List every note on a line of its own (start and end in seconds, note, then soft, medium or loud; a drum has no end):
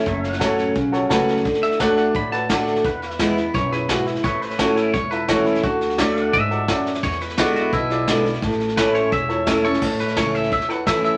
0.00 0.55 A5 medium
0.06 0.37 F#1 medium
0.06 0.72 F#2 medium
0.06 1.44 C#5 medium
0.06 0.33 E5 medium
0.06 kick loud
0.06 snare soft
0.24 snare soft
0.33 1.45 F#5 medium
0.33 snare soft
0.39 0.71 A1 medium
0.39 0.74 F#3 medium
0.39 0.74 A3 medium
0.39 0.74 C#4 medium
0.39 0.61 F#4 medium
0.39 0.74 F#4 medium
0.39 0.62 A4 medium
0.39 0.62 C#5 loud
0.39 kick medium
0.39 snare loud
0.39 hi-hat pedal medium
0.58 snare soft
0.75 1.05 B1 medium
0.75 1.42 C#3 medium
0.75 kick loud
0.75 snare soft
0.92 1.03 F#4 medium
0.92 1.03 A4 medium
0.92 1.04 C#5 medium
0.92 snare soft
1.09 1.40 C#2 medium
1.09 1.43 F#3 medium
1.09 1.44 A3 medium
1.09 1.44 C#4 medium
1.09 1.31 F#4 medium
1.09 1.44 F#4 loud
1.09 1.31 A4 medium
1.09 1.32 B4 medium
1.09 kick medium
1.09 snare loud
1.09 hi-hat pedal medium
1.28 snare soft
1.37 snare soft
1.45 2.08 D2 medium
1.45 1.79 D3 medium
1.45 kick loud
1.45 snare soft
1.54 snare soft
1.63 1.80 E5 loud
1.63 snare soft
1.71 snare soft
1.79 2.13 D3 medium
1.79 2.13 A3 medium
1.79 2.14 D4 medium
1.79 2.01 F#4 medium
1.79 2.14 F#4 medium
1.79 2.01 A4 medium
1.79 2.00 C#5 medium
1.79 2.02 D5 medium
1.79 1.97 F#5 medium
1.79 2.84 F#5 medium
1.79 kick medium
1.79 snare loud
1.79 hi-hat pedal medium
1.97 2.84 D5 medium
1.97 2.15 F#5 medium
1.97 snare soft
2.15 2.77 A1 medium
2.15 2.82 A2 medium
2.15 2.32 B5 medium
2.15 kick loud
2.15 snare soft
2.32 2.43 F#4 medium
2.32 2.43 A4 medium
2.32 2.43 B4 medium
2.32 2.83 A5 loud
2.32 snare soft
2.49 2.83 D3 medium
2.49 2.83 A3 medium
2.49 2.83 D4 loud
2.49 2.71 F#4 medium
2.49 2.83 F#4 medium
2.49 2.71 A4 medium
2.49 2.71 D5 medium
2.49 kick medium
2.49 snare loud
2.49 hi-hat pedal medium
2.67 snare soft
2.76 snare soft
2.84 3.47 E2 medium
2.84 3.51 E2 loud
2.84 4.23 B4 medium
2.84 3.12 F#5 medium
2.84 kick loud
2.84 snare soft
3.02 snare soft
3.10 4.24 E5 medium
3.10 snare soft
3.19 3.36 E3 medium
3.19 3.37 G#3 medium
3.19 3.37 B3 medium
3.19 3.41 E4 medium
3.19 3.36 E4 loud
3.19 3.41 G#4 medium
3.19 3.41 B4 medium
3.19 kick medium
3.19 snare loud
3.19 hi-hat pedal medium
3.37 3.55 B3 soft
3.37 3.54 E4 medium
3.37 snare soft
3.54 4.17 B1 medium
3.54 3.88 F#2 medium
3.54 3.72 C#5 loud
3.54 kick loud
3.54 snare soft
3.71 3.82 E4 medium
3.71 3.83 G#4 medium
3.71 3.89 B4 medium
3.71 3.83 C#5 medium
3.71 snare soft
3.89 4.23 G#2 medium
3.89 4.10 E4 medium
3.89 4.07 F#4 medium
3.89 4.11 G#4 medium
3.89 4.11 B4 medium
3.89 kick medium
3.89 snare loud
3.89 hi-hat pedal medium
4.07 4.24 E4 medium
4.07 snare soft
4.15 snare soft
4.24 4.87 A1 medium
4.24 4.91 A2 medium
4.24 4.50 B4 medium
4.24 4.41 C#5 loud
4.24 5.63 E5 medium
4.24 kick loud
4.24 snare soft
4.41 4.59 B4 medium
4.41 snare soft
4.50 5.63 C#5 medium
4.50 snare soft
4.59 4.92 E3 medium
4.59 4.93 A3 medium
4.59 4.93 C#4 medium
4.59 4.80 E4 medium
4.59 4.93 E4 medium
4.59 4.77 F#4 medium
4.59 4.81 A4 medium
4.59 4.81 C#5 medium
4.59 kick medium
4.59 snare loud
4.59 hi-hat pedal medium
4.76 4.94 E4 medium
4.76 snare soft
4.94 5.57 E1 medium
4.94 5.61 E2 medium
4.94 5.11 C#5 medium
4.94 kick loud
4.94 snare soft
5.11 5.22 E4 medium
5.11 5.23 A4 medium
5.11 5.28 B4 loud
5.11 5.23 E5 medium
5.11 snare soft
5.28 5.62 E3 medium
5.28 5.63 A3 medium
5.28 5.63 C#4 medium
5.28 5.50 E4 medium
5.28 5.63 E4 medium
5.28 5.46 F#4 medium
5.28 5.50 A4 medium
5.28 5.51 C#5 medium
5.28 kick medium
5.28 snare loud
5.28 hi-hat pedal medium
5.46 5.63 E4 medium
5.46 snare soft
5.55 snare soft
5.63 6.26 D2 medium
5.63 5.97 D3 medium
5.63 5.98 F#4 loud
5.63 kick loud
5.63 snare soft
5.81 snare soft
5.90 snare soft
5.98 6.32 D3 medium
5.98 6.32 A3 medium
5.98 6.32 D4 medium
5.98 6.20 F#4 medium
5.98 6.32 F#4 medium
5.98 6.20 A4 medium
5.98 6.18 C#5 medium
5.98 6.20 D5 medium
5.98 6.24 E5 medium
5.98 kick medium
5.98 snare loud
5.98 hi-hat pedal medium
6.16 7.02 D5 medium
6.16 snare soft
6.24 7.03 F#5 medium
6.33 6.96 A1 medium
6.33 6.67 G#2 medium
6.33 7.01 E5 loud
6.33 kick loud
6.33 snare soft
6.51 6.61 F#4 medium
6.51 6.62 A4 medium
6.51 6.62 D5 medium
6.51 snare soft
6.67 7.02 F#2 loud
6.67 6.89 F#4 medium
6.67 6.89 A4 medium
6.67 6.90 D5 medium
6.67 kick medium
6.67 snare loud
6.67 hi-hat pedal medium
6.86 snare soft
6.94 snare soft
7.03 7.66 E2 medium
7.03 7.70 E2 medium
7.03 7.22 C#5 medium
7.03 kick loud
7.03 snare soft
7.12 snare soft
7.21 7.38 B4 medium
7.21 snare soft
7.29 snare soft
7.38 7.71 D3 medium
7.38 7.72 G#3 medium
7.38 7.72 B3 loud
7.38 7.59 E4 medium
7.38 7.72 E4 loud
7.38 7.55 F#4 medium
7.38 7.60 G#4 medium
7.38 8.42 B4 medium
7.38 7.60 D5 medium
7.38 7.65 F#5 medium
7.38 kick medium
7.38 snare loud
7.38 hi-hat pedal medium
7.55 7.73 F#4 loud
7.55 snare soft
7.65 8.42 E5 medium
7.72 8.35 B1 medium
7.72 8.39 B2 loud
7.72 8.07 E4 loud
7.72 kick loud
7.72 snare soft
7.90 8.01 E4 medium
7.90 8.01 G#4 medium
7.90 8.01 D5 medium
7.90 snare soft
8.07 8.24 D3 loud
8.07 8.25 G#3 medium
8.07 8.25 B3 medium
8.07 8.28 E4 medium
8.07 8.24 E4 loud
8.07 8.29 G#4 medium
8.07 8.29 D5 medium
8.07 kick medium
8.07 snare loud
8.07 hi-hat pedal medium
8.25 8.43 B3 medium
8.25 8.42 E4 medium
8.25 snare soft
8.34 snare soft
8.42 9.05 A1 medium
8.42 9.09 A2 loud
8.42 kick loud
8.42 snare soft
8.51 snare soft
8.60 snare soft
8.68 snare soft
8.77 9.11 E3 medium
8.77 9.11 A3 loud
8.77 9.11 C#4 medium
8.77 8.98 E4 medium
8.77 9.11 E4 medium
8.77 8.99 A4 medium
8.77 8.94 B4 medium
8.77 9.03 B4 medium
8.77 8.99 C#5 medium
8.77 9.82 E5 medium
8.77 kick medium
8.77 snare loud
8.77 hi-hat pedal medium
8.95 9.12 C#5 medium
8.95 snare soft
9.03 9.81 C#5 medium
9.12 9.75 E1 medium
9.12 9.79 E2 medium
9.12 9.63 E5 loud
9.12 kick loud
9.12 snare soft
9.29 9.40 E4 medium
9.29 9.40 A4 medium
9.29 9.40 C#5 medium
9.29 snare soft
9.46 9.64 E3 medium
9.46 9.64 A3 medium
9.46 9.64 C#4 loud
9.46 9.68 E4 medium
9.46 9.63 E4 loud
9.46 9.68 A4 medium
9.46 9.68 C#5 medium
9.46 kick loud
9.46 snare loud
9.46 hi-hat pedal loud
9.64 9.82 C#4 medium
9.64 9.81 E4 medium
9.64 9.97 A4 medium
9.64 9.82 C#5 loud
9.64 snare soft
9.73 snare soft
9.82 9.98 A1 medium
9.82 10.48 A2 medium
9.82 11.17 C#5 medium
9.82 11.17 E5 medium
9.82 kick loud
9.82 snare soft
9.82 crash loud
9.99 10.18 B4 medium
9.99 muted upright bass stroke soft
9.99 snare soft
10.08 snare soft
10.16 10.51 C#2 medium
10.16 10.50 E3 medium
10.16 10.50 A3 medium
10.16 10.51 C#4 medium
10.16 10.38 E4 medium
10.16 10.51 E4 medium
10.16 10.38 A4 medium
10.16 10.38 C#5 medium
10.16 10.35 C#5 medium
10.16 kick medium
10.16 snare loud
10.16 hi-hat pedal medium
10.34 10.51 E5 medium
10.34 snare soft
10.43 snare soft
10.52 10.86 E2 medium
10.52 11.17 E2 medium
10.52 10.70 E5 loud
10.52 kick loud
10.52 snare soft
10.60 snare soft
10.68 10.79 E4 medium
10.68 10.80 A4 medium
10.68 10.80 B4 medium
10.68 10.87 F#5 medium
10.68 snare soft
10.86 11.03 A2 medium
10.86 11.17 E3 medium
10.86 11.17 A3 medium
10.86 11.17 C#4 medium
10.86 11.07 E4 medium
10.86 11.17 E4 medium
10.86 11.08 A4 medium
10.86 11.08 B4 medium
10.86 11.03 E5 medium
10.86 kick medium
10.86 snare loud
10.86 hi-hat pedal medium
11.04 11.17 E5 medium
11.04 muted upright bass stroke soft
11.04 snare soft